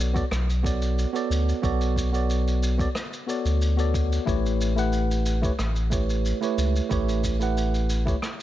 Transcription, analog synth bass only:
Already playing: B1
0.32 B1
1.30 D2
1.63 B1
3.45 D2
4.27 A1
5.59 A1
6.58 C#2
6.91 A1

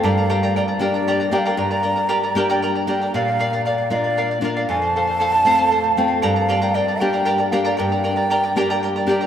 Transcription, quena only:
0.07 F5
0.57 D5
0.83 D5
1.34 F5 G5
1.59 A#5
2.89 G5
3.15 F5
3.65 D5
3.93 D#5
3.97 D5
4.44 F5
4.69 G#5
4.87 A5
5.97 G5
6.23 F5
6.75 D5
7.01 G5
7.52 F5
7.78 G5
9.09 G5

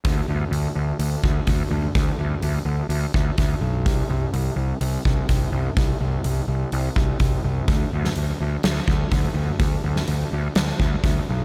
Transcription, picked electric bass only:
0.05 D2
0.28 D2
0.51 D2
0.75 D2
0.99 D2
1.24 D2
1.47 D2
1.71 D2
1.96 D2
2.19 D2
2.43 D2
2.65 D2
2.89 D2
3.14 D2
3.38 D2
3.61 B1
3.86 C2
4.10 C2
4.34 C2
4.56 C2
4.81 C2
5.05 C2
5.29 C2
5.52 C2
5.77 C2
6.01 C2
6.25 C2
6.48 C2
6.72 C2
6.96 C2
7.20 C2
7.44 C2
7.68 D2
7.93 D2
8.16 D2
8.40 D2
8.64 D2
8.88 D2
9.11 D2
9.34 D2
9.60 D2
9.84 D2
10.08 D2
10.32 D2
10.56 D2
10.80 D2
11.03 D2
11.29 B1

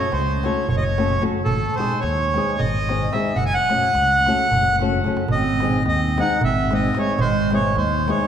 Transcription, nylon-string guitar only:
0.44 A3 C#4 F#4 A4
0.98 A3 C#4 F#4 A4
1.21 A3 C#4 F#4 A4
1.78 G#3 C4 D#4 G#4
2.35 G#3 C4 D#4 G#4
2.89 G#3 C4 D#4 G#4
3.14 G#3 C4 D#4 G#4
3.70 A3 C#4 F#4 A4
4.27 A3 C#4 F#4 A4
4.81 A3 C#4 F#4 A4
5.05 A3 C#4 F#4 A4
5.61 G#3 C4 D#4 G#4
6.18 G#3 C4 D#4 G#4
6.72 G#3 C4 D#4 G#4
6.96 G#3 C4 D#4 G#4
7.52 G#3 C4 D#4 G#4
8.07 G#3 C4 D#4 G#4

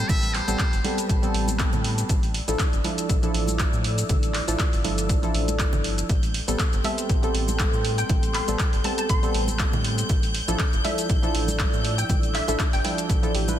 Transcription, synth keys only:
Already playing: G3 B3 C4 A4
0.48 G3 B3 C4 A4
0.84 G3 B3 C4 A4
1.22 G3 B3 C4 A4
2.48 F3 D4 E4 A4
2.84 F3 D4 E4 A4
3.22 F3 D4 E4 A4
4.48 F3 D4 E4 A4
4.84 F3 D4 E4 A4
5.22 F3 D4 E4 A4
6.48 G3 B3 C4 A4
6.84 G3 B3 C4 A4
7.22 G3 B3 C4 A4
8.48 G3 B3 C4 A4
8.84 G3 B3 C4 A4
9.22 G3 B3 C4 A4
10.48 F3 D4 E4 A4
10.84 F3 D4 E4 A4
11.22 F3 D4 E4 A4
12.48 F3 D4 E4 A4
12.84 F3 D4 E4 A4
13.23 F3 D4 E4 A4
13.34 F3 D4 E4 G4
13.48 F3 D4 E4 B4

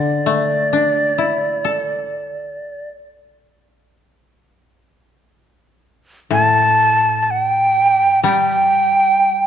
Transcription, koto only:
Already playing: D3 E3
0.26 A3
0.73 D4
1.18 E4
1.65 A4
6.31 A2
8.24 G3

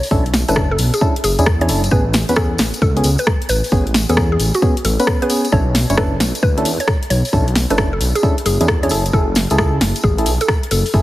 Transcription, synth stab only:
0.11 C#4 D4 E4 A4
0.48 C#4 D4 E4 A4
0.56 C#4 E4 A4
1.01 C#4 D4 E4 A4
1.39 C#4 D4 E4 G#4
1.61 C#4 D4 E4 G#4
1.69 C#4 D4 E4 A4
1.92 B3 C#4 G#4
2.29 B3 C#4 B4
2.37 B3 C#4 G#4
2.97 B3 C#4 G#4
3.72 B3 C#4 G#4
4.09 B3 C#4 G#4
4.17 C#4 G#4
4.62 B3 C#4 G#4
5.00 B3 C#4 B4
5.22 B3 C#4 G#4
5.30 B3 C#4 G#4
5.52 C#4 D4 E4 A4
5.90 C#4 D4 E4 C#5
5.97 C#4 D4 E4 A4
6.58 C#4 D4 E4 A4
7.33 C#4 D4 E4 A4
7.70 C#4 D4 E4 A4
8.23 C#4 D4 E4 A4
8.60 C#4 D4 E4 G#4
8.83 C#4 D4 E4 G#4
8.91 E4 G#4 A4
9.13 E4 G#4 A4
9.51 E4 G#4 A4
10.18 E4 G#4 A4
10.94 E4 G#4 A4

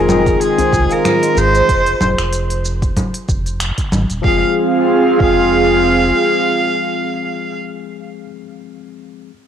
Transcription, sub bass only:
Already playing: F1
0.73 C2
1.37 G#1
1.69 F1
2.01 F1
2.18 F1
3.28 F1
3.92 G#1
4.10 D#1
4.24 F1
5.20 F1

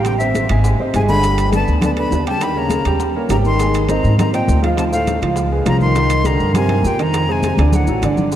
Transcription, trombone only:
0.04 C3
0.19 G2
0.94 C3
1.09 D3
1.54 D3
1.84 D3
1.97 D3
2.26 C#3
2.40 D#3
2.56 C#3
3.29 C#3
3.44 D#3
3.88 D#3
4.17 D#3
4.32 A#2
4.61 G#2
4.77 C3
4.92 A2
5.68 C#3
5.83 D#3
6.27 D3
6.57 C3
6.86 A#2
7.00 D#3
7.31 C3
7.74 A2

